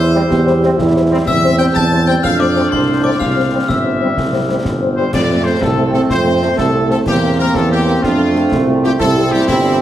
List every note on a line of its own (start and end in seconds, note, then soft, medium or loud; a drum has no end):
0.00 0.23 E2 loud
0.00 0.32 E4 medium
0.00 1.07 C5 loud
0.00 1.07 C6 medium
0.14 0.20 G3 medium
0.14 0.22 G3 loud
0.14 0.22 C4 medium
0.14 0.20 E4 medium
0.14 0.20 C5 medium
0.30 0.71 E2 loud
0.30 0.79 G4 loud
0.30 concert bass drum medium
0.30 snare medium
0.47 0.52 G3 medium
0.47 0.53 E4 medium
0.47 0.53 C5 medium
0.47 snare medium
0.62 0.68 G3 medium
0.62 0.69 G3 medium
0.62 0.70 C4 medium
0.62 0.68 E4 medium
0.62 0.68 C5 medium
0.62 snare medium
0.78 1.19 E2 loud
0.78 1.26 E4 loud
0.78 concert bass drum medium
0.78 snare medium
0.95 1.01 G3 medium
0.95 1.01 E4 medium
0.95 1.01 C5 medium
1.11 1.17 G3 medium
1.11 1.18 G3 loud
1.11 1.18 C4 loud
1.11 1.17 E4 medium
1.11 1.17 C5 medium
1.27 1.67 E2 medium
1.27 2.26 C4 loud
1.27 1.57 E5 loud
1.27 1.57 E6 loud
1.27 concert bass drum medium
1.27 snare medium
1.27 crash soft
1.43 1.49 G3 medium
1.43 1.49 C4 medium
1.43 1.49 C5 medium
1.59 1.65 G3 loud
1.59 1.65 G3 medium
1.59 1.65 C4 medium
1.59 1.65 C5 medium
1.59 1.66 G5 loud
1.59 1.74 G6 loud
1.74 2.16 E2 loud
1.74 2.05 A5 loud
1.74 2.06 A6 loud
1.74 concert bass drum medium
1.74 snare medium
1.91 1.97 G3 medium
1.91 1.97 C4 medium
1.91 1.97 C5 medium
2.07 2.13 G3 medium
2.07 2.14 G3 medium
2.07 2.13 C4 medium
2.07 2.14 C4 medium
2.07 2.13 C5 medium
2.07 2.15 G5 loud
2.07 2.22 G6 loud
2.23 2.64 F2 medium
2.23 3.19 D4 medium
2.23 2.39 F5 loud
2.23 2.39 F6 loud
2.23 concert bass drum medium
2.23 snare medium
2.39 2.45 A3 medium
2.39 2.45 C4 medium
2.39 2.45 C5 medium
2.39 2.72 D5 loud
2.39 2.70 D6 medium
2.39 snare medium
2.55 2.62 A3 medium
2.55 2.61 C4 medium
2.55 2.62 C4 medium
2.55 2.62 C5 medium
2.55 snare medium
2.71 3.12 C2 medium
2.71 3.04 C5 medium
2.71 3.02 C6 medium
2.71 concert bass drum medium
2.71 snare medium
2.88 2.94 A3 medium
2.88 2.94 C4 medium
2.88 2.94 C5 medium
3.03 3.09 A3 medium
3.03 3.11 A3 medium
3.03 3.09 C4 medium
3.03 3.11 C4 medium
3.03 3.09 C5 medium
3.03 3.19 D5 medium
3.03 3.19 D6 medium
3.19 3.57 C2 medium
3.19 4.85 C4 medium
3.19 3.65 F5 medium
3.19 3.65 F6 medium
3.19 concert bass drum medium
3.19 snare medium
3.19 crash soft
3.36 3.42 G3 medium
3.36 3.42 C4 medium
3.36 3.42 C5 soft
3.52 3.58 G3 medium
3.52 3.59 G3 medium
3.52 3.58 C4 medium
3.52 3.59 C4 medium
3.52 3.58 C5 medium
3.68 4.09 G1 medium
3.68 4.65 E5 medium
3.68 4.61 E6 medium
3.68 concert bass drum medium
3.68 snare medium
3.85 3.90 G3 medium
3.85 3.90 C4 soft
3.85 3.91 C5 medium
4.01 4.07 G3 medium
4.01 4.09 G3 medium
4.01 4.07 C4 medium
4.01 4.08 C4 medium
4.01 4.07 C5 medium
4.17 4.57 C2 medium
4.17 concert bass drum medium
4.17 snare medium
4.32 4.39 G3 medium
4.32 4.38 C4 soft
4.32 4.38 C5 medium
4.49 4.55 G3 medium
4.49 4.56 G3 medium
4.49 4.55 C4 medium
4.49 4.56 C4 medium
4.49 4.55 C5 medium
4.65 5.05 G1 medium
4.65 concert bass drum medium
4.65 snare medium
4.81 4.87 G3 medium
4.81 4.87 C4 soft
4.81 4.87 C5 soft
4.96 5.03 G3 medium
4.96 5.04 G3 medium
4.96 5.03 C4 medium
4.96 5.04 C4 medium
4.96 5.12 C5 medium
4.96 5.03 C5 medium
5.13 5.54 F2 medium
5.13 5.62 A3 medium
5.13 7.03 A3 medium
5.13 7.03 C4 medium
5.13 5.44 D5 loud
5.13 concert bass drum medium
5.13 snare medium
5.13 crash medium
5.30 5.36 A3 medium
5.30 5.36 C4 medium
5.45 5.52 A3 medium
5.45 5.52 C4 medium
5.45 5.61 C5 loud
5.60 6.02 C2 medium
5.60 6.56 C4 loud
5.60 5.92 A4 medium
5.60 concert bass drum medium
5.60 snare medium
5.77 5.83 A3 medium
5.77 5.83 C4 medium
5.93 5.99 A3 medium
5.93 5.99 C4 medium
5.93 6.00 A4 loud
5.93 snare medium
6.09 6.50 F2 medium
6.09 6.55 C5 loud
6.09 concert bass drum medium
6.09 snare medium
6.25 6.32 A3 medium
6.25 6.32 C4 medium
6.42 6.48 A3 medium
6.42 6.48 C4 medium
6.42 snare medium
6.57 6.99 C2 medium
6.57 7.02 A3 medium
6.57 6.88 A4 medium
6.57 concert bass drum medium
6.57 snare medium
6.74 6.80 A3 medium
6.74 6.80 C4 medium
6.89 6.95 A3 medium
6.89 6.96 C4 medium
6.89 6.98 A4 loud
6.89 snare medium
7.06 7.46 E2 medium
7.06 7.99 A#3 medium
7.06 7.99 C4 medium
7.06 8.96 C4 medium
7.06 7.37 G4 loud
7.06 concert bass drum medium
7.06 snare medium
7.06 crash soft
7.22 7.28 A#3 medium
7.22 7.28 C4 medium
7.38 7.44 A#3 medium
7.38 7.44 C4 medium
7.38 7.54 A#4 loud
7.55 7.95 E2 medium
7.55 7.71 A4 loud
7.55 concert bass drum medium
7.55 snare medium
7.70 7.76 A#3 medium
7.70 7.76 C4 medium
7.70 8.01 G4 loud
7.85 7.92 A#3 medium
7.85 7.92 C4 medium
7.85 snare medium
8.03 8.43 F2 medium
8.03 9.00 A3 loud
8.03 8.48 D4 medium
8.03 8.67 F4 loud
8.03 concert bass drum medium
8.03 snare medium
8.18 8.24 A3 medium
8.18 8.24 C4 medium
8.18 8.24 F4 medium
8.35 8.41 A3 medium
8.35 8.41 C4 medium
8.35 8.41 F4 medium
8.35 snare medium
8.52 8.92 C2 medium
8.52 8.97 C4 medium
8.52 concert bass drum medium
8.52 snare medium
8.67 8.73 A3 medium
8.67 8.73 C4 medium
8.67 8.73 F4 medium
8.83 8.89 A3 medium
8.83 8.89 C4 medium
8.83 8.90 F4 medium
8.83 8.91 G4 loud
8.83 snare medium
8.99 9.40 C2 loud
8.99 9.82 G3 loud
8.99 9.82 C4 loud
8.99 9.45 E4 medium
8.99 9.30 A4 loud
8.99 concert bass drum loud
8.99 snare medium
8.99 crash soft
9.15 9.21 G3 medium
9.15 9.21 C4 medium
9.15 9.21 G4 medium
9.32 9.38 G3 medium
9.32 9.38 C4 medium
9.32 9.48 G4 loud
9.32 9.38 G4 medium
9.48 9.82 G1 loud
9.48 9.78 E4 loud
9.48 9.82 G4 loud
9.48 concert bass drum medium
9.48 snare medium
9.64 9.70 G3 medium
9.64 9.70 C4 medium
9.64 9.70 G4 medium